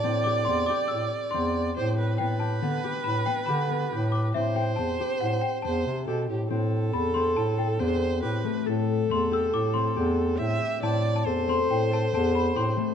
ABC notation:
X:1
M:5/4
L:1/16
Q:1/4=139
K:Am
V:1 name="Celesta"
a2 d'2 c'2 d'2 e'4 c'6 z2 | g2 a6 b2 g2 b6 d'2 | e2 g2 a4 ^f2 g2 a6 z2 | z4 b2 c'2 a2 g8 z2 |
z4 c'2 e'2 d'2 c'8 z2 | a3 a3 c'2 g2 a2 a2 b2 c'3 z |]
V:2 name="Viola"
d16 c2 B2 | B16- B4 | c12 c4 A2 G2 | A12 c4 B4 |
A16 e4 | d4 c16 |]
V:3 name="Harp"
C2 G2 C2 G4 z2 C4 G4 | B,2 G2 B,2 G4 B,2 G2 B,2 G4 | C2 G2 C2 G4 z2 C4 G4 | C4 A2 C4 A2 C4 G2 A,2 |
A4 A,2 G4 C2 G4 C2 G2 | C4 A2 C4 A2 C4 G2 A,2 |]
V:4 name="Bass clarinet" clef=bass
A,,4 E,,2 z2 A,,2 z2 E,,4 A,,4 | A,,4 D,2 z2 A,,2 z2 D,4 A,,4 | A,,4 E,,2 z2 A,,2 z2 E,,2 C,2 B,,2 A,,2 | A,,4 E,,4 A,,4 E,,4 A,,2 z2 |
A,,4 E,,4 A,,4 E,,4 A,,2 z2 | A,,4 E,,4 A,,4 E,,4 A,,2 z2 |]